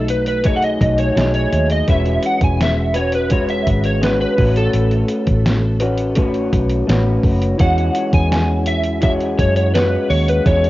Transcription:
Already playing: fingered electric bass B1, clean electric guitar B2 F#3 A3 D#4 F#4
0.08 electric slide guitar B4, closed hi-hat
0.26 electric slide guitar B4, closed hi-hat
0.44 clean electric guitar F#3 A3 D#4 G#4, electric slide guitar C#5, kick, closed hi-hat
0.56 electric slide guitar F#5
0.63 electric slide guitar D#5, closed hi-hat
0.81 fingered electric bass B1, kick, closed hi-hat
0.98 electric slide guitar C#5, closed hi-hat
1.16 fingered electric bass B1, clean electric guitar F#3 A3 D#4 G#4, snare, closed hi-hat
1.34 electric slide guitar C#5, closed hi-hat
1.52 fingered electric bass D#2, closed hi-hat
1.70 electric slide guitar D#5, closed hi-hat
1.88 fingered electric bass E1, clean electric guitar E3 G#3 C#4 F#4 B4, electric slide guitar E5, kick, closed hi-hat
2.06 closed hi-hat
2.23 electric slide guitar F#5, closed hi-hat
2.41 fingered electric bass E1, electric slide guitar G#5, kick, closed hi-hat
2.61 electric slide guitar E5, snare, closed hi-hat
2.94 clean electric guitar C#4 F#4 B4, electric slide guitar C#5, closed hi-hat
3.12 electric slide guitar B4, closed hi-hat
3.30 clean electric guitar G#3 C#4 F#4 B4, electric slide guitar C#5, kick, closed hi-hat
3.49 electric slide guitar E5, closed hi-hat
3.67 fingered electric bass G#1, kick, closed hi-hat
3.84 electric slide guitar C#5, closed hi-hat
4.01 clean electric guitar G#3 C#4 F#4 B4, electric slide guitar B4, snare, closed hi-hat
4.21 electric slide guitar B4
4.36 fingered electric bass A1, clean electric guitar C#4 F#4 B4, kick, open hi-hat
4.40 clean electric guitar A3
4.56 electric slide guitar A4, closed hi-hat
4.73 fingered electric bass A1, closed hi-hat
4.91 closed hi-hat
5.08 closed hi-hat
5.27 fingered electric bass A1, kick, closed hi-hat
5.46 snare, closed hi-hat
5.80 clean electric guitar C#4 F#4 B4, closed hi-hat
5.97 closed hi-hat
6.15 clean electric guitar A3 C#4 F#4 B4, kick, closed hi-hat
6.34 closed hi-hat
6.53 fingered electric bass B1, kick, closed hi-hat
6.69 closed hi-hat
6.87 fingered electric bass A1, clean electric guitar A3 C#4 F#4 B4, snare, closed hi-hat
7.23 fingered electric bass F#1, kick, open hi-hat
7.42 closed hi-hat
7.58 fingered electric bass E2, clean electric guitar E3 G#3 C#4, electric slide guitar F#5, kick, closed hi-hat
7.62 clean electric guitar F#4
7.78 closed hi-hat
7.95 closed hi-hat
8.13 fingered electric bass E2, electric slide guitar G#5, kick, closed hi-hat
8.32 snare, closed hi-hat
8.66 electric slide guitar E5, closed hi-hat
8.83 closed hi-hat
9.01 clean electric guitar E3 G#3 C#4 F#4, electric slide guitar E5, kick, closed hi-hat
9.20 closed hi-hat
9.39 fingered electric bass F#2, electric slide guitar C#5, kick, closed hi-hat
9.56 electric slide guitar C#5, closed hi-hat
9.74 clean electric guitar G#3 C#4 F#4, electric slide guitar B4, snare, closed hi-hat
10.10 fingered electric bass D#2, electric slide guitar C#5, open hi-hat
10.28 electric slide guitar B4, closed hi-hat
10.45 fingered electric bass E2, clean electric guitar E3 G#3 C#4 F#4, electric slide guitar C#5, kick, closed hi-hat
10.64 closed hi-hat

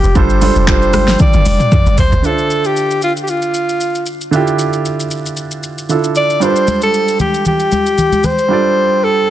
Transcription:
Already playing: grand piano G3 D4 F4 A4 B4 C5, alto saxophone G4
0.04 log drum bass F1, shaker
0.15 log drum bass G1, grand piano G3 D4 F4 A4 C5, alto saxophone C5, kick, shaker
0.30 shaker
0.41 grand piano G3 D4 F4 A4 C5, open hi-hat, high conga, shaker
0.56 log drum bass F1, shaker
0.67 grand piano G3 D4 F4 A4 C5, alto saxophone C5, kick, clap, shaker
0.82 shaker
0.93 log drum bass G1, cross-stick, open hi-hat, high conga, shaker
1.08 snare, shaker
1.19 alto saxophone D5, kick, high tom, low conga, shaker
1.33 log drum bass G1, high tom, shaker
1.45 log drum bass F1, open hi-hat, high conga, shaker
1.60 mid tom, shaker
1.72 kick, mid tom, low conga, shaker
1.86 log drum bass G1, high conga, shaker
1.98 log drum bass A1, alto saxophone C5, floor tom, open hi-hat, low conga, shaker
2.12 log drum bass G1, floor tom, shaker
2.22 grand piano D3 D4 F4 E5, alto saxophone A4, shaker
2.27 grand piano C5
2.38 shaker
2.50 shaker
2.64 alto saxophone G4, shaker
2.77 shaker
2.91 shaker
3.02 alto saxophone F4, shaker
3.17 shaker
3.23 alto saxophone G4
3.28 alto saxophone F4, shaker
3.42 shaker
3.54 shaker
3.69 shaker
3.81 shaker
3.95 shaker
4.06 shaker
4.21 shaker
4.31 grand piano D3 D4 E4 F4, shaker
4.36 grand piano G4
4.47 shaker
4.59 shaker
4.73 shaker
4.85 shaker
5.00 shaker
5.11 shaker
5.26 shaker
5.37 shaker
5.51 shaker
5.63 shaker
5.78 shaker
5.89 grand piano D3 D4 E4 F4 A4, shaker
6.04 shaker
6.15 alto saxophone D5, shaker
6.30 shaker
6.40 grand piano G3 D4 F4 A4, alto saxophone C5, shaker
6.45 grand piano B4
6.51 grand piano C5
6.56 shaker
6.68 high conga, shaker
6.82 alto saxophone A4, shaker
6.94 shaker
7.08 shaker
7.20 alto saxophone G4, high conga, low conga, shaker
7.34 shaker
7.45 alto saxophone G4, low conga, shaker
7.60 shaker
7.72 high conga, shaker
7.86 shaker
7.98 low conga, shaker
8.12 high conga, shaker
8.24 alto saxophone C5, high conga, low conga, shaker
8.39 shaker
8.48 grand piano G3 D4 F4 A4
8.53 grand piano D5
9.04 alto saxophone A4

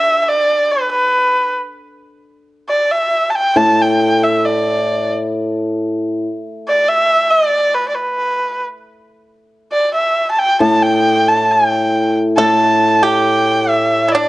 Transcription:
Already playing: erhu E5
0.22 erhu E5
0.28 erhu D5
0.72 erhu B4
0.91 erhu B4
2.69 erhu D5
2.91 erhu E5
3.30 erhu A5
3.35 erhu G5
3.56 hammered dulcimer A2, erhu A5
3.81 erhu G5
4.24 erhu E5
4.45 erhu D5
6.68 erhu D5
6.89 erhu E5
7.30 erhu D5
7.75 erhu B4
7.89 erhu D5
7.95 erhu B4
9.72 erhu D5
9.94 erhu E5
10.31 erhu A5
10.39 erhu G5
10.60 hammered dulcimer A2, erhu A5
10.82 erhu G5
11.28 erhu A5
11.51 erhu G5
12.37 hammered dulcimer A2, pipa A4, erhu A5
13.02 pipa G4, erhu G5
13.69 erhu E5
14.07 pipa E4, erhu E5
14.12 pipa D4, erhu D5

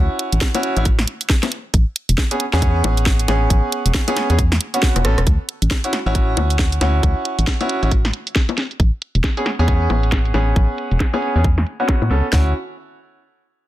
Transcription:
Already playing: grand piano C#4 E4 F#4
0.19 closed hi-hat
0.32 fm bass A1, closed hi-hat
0.41 kick, snare
0.55 grand piano C#4 E4 F#4, closed hi-hat, high bongo
0.63 closed hi-hat
0.77 fm bass A1, grand piano C#4 E4 F#4, closed hi-hat
0.85 kick, closed hi-hat
0.99 snare
1.07 closed hi-hat
1.21 closed hi-hat
1.30 kick, snare
1.43 snare, closed hi-hat, high bongo
1.52 closed hi-hat
1.74 fm bass A1, kick, closed hi-hat
1.96 closed hi-hat
2.09 fm bass E1, closed hi-hat
2.18 kick, snare
2.31 grand piano B3 C#4 G#4, closed hi-hat
2.40 closed hi-hat
2.53 fm bass E2, grand piano B3 C#4 G#4, snare
2.62 kick, closed hi-hat
2.84 fm bass A1, closed hi-hat, high bongo
2.97 closed hi-hat
3.06 kick, snare
3.19 closed hi-hat
3.28 fm bass A1, grand piano B3 C#4 G#4, snare, closed hi-hat, high bongo
3.50 fm bass A1, kick, closed hi-hat
3.72 closed hi-hat
3.86 fm bass E1, closed hi-hat
3.94 kick, snare
4.08 grand piano B3 C#4 G#4, closed hi-hat, high bongo
4.17 snare, closed hi-hat
4.30 fm bass E2, grand piano B3 C#4 G#4, closed hi-hat
4.39 kick, closed hi-hat
4.52 snare
4.61 closed hi-hat
4.74 grand piano B3 C#4 F#4, closed hi-hat
4.83 kick, snare
4.96 fm bass E1, cross-stick, closed hi-hat, high bongo
5.05 fm bass A1, grand piano B3 C#4 A4, cross-stick, closed hi-hat
5.18 fm bass E1, cross-stick, closed hi-hat
5.27 fm bass D2, kick, closed hi-hat
5.49 closed hi-hat
5.62 fm bass A1, closed hi-hat
5.71 kick, snare
5.84 grand piano C#4 E4 F#4, closed hi-hat
5.93 snare, closed hi-hat
6.06 fm bass A1, grand piano C#4 E4 F#4
6.15 kick, closed hi-hat
6.37 fm bass D2, closed hi-hat, high bongo
6.50 closed hi-hat
6.59 kick, snare
6.72 closed hi-hat
6.81 fm bass D2, grand piano C#4 E4 F#4, snare, closed hi-hat, high bongo
7.03 fm bass D2, kick, closed hi-hat
7.25 closed hi-hat
7.39 fm bass A1, closed hi-hat
7.47 kick, snare
7.61 grand piano C#4 E4 F#4, closed hi-hat, high bongo
7.69 closed hi-hat
7.83 fm bass A1, grand piano C#4 E4 F#4, closed hi-hat
7.91 kick, closed hi-hat
8.05 snare
8.13 closed hi-hat
8.27 closed hi-hat
8.36 kick, snare
8.49 closed hi-hat, high bongo
8.58 snare, closed hi-hat
8.71 closed hi-hat
8.80 fm bass A1, kick, closed hi-hat
9.02 closed hi-hat
9.15 fm bass E1, closed hi-hat
9.24 kick, snare
9.37 grand piano B3 C#4 G#4, closed hi-hat
9.46 snare, closed hi-hat
9.59 fm bass E2, grand piano B3 C#4 G#4
9.68 kick, closed hi-hat
9.90 fm bass A1, closed hi-hat, high bongo
10.03 closed hi-hat
10.12 kick, snare
10.25 closed hi-hat
10.34 fm bass A1, grand piano B3 C#4 G#4, snare, closed hi-hat, high bongo
10.56 fm bass A1, kick, closed hi-hat
10.78 closed hi-hat
10.91 fm bass E1, closed hi-hat
11.00 kick, snare
11.14 grand piano B3 C#4 G#4, closed hi-hat, high bongo
11.22 closed hi-hat
11.36 fm bass E2, grand piano B3 C#4 G#4, closed hi-hat
11.44 kick, closed hi-hat
11.58 snare
11.67 closed hi-hat
11.80 grand piano B3 C#4 F#4, closed hi-hat
11.89 kick, snare
12.02 fm bass A2, closed hi-hat, high bongo
12.10 fm bass C#2, grand piano B3 C#4 A4, snare, closed hi-hat
12.24 closed hi-hat
12.33 fm bass D2, grand piano C#4 E4 F#4, kick, snare

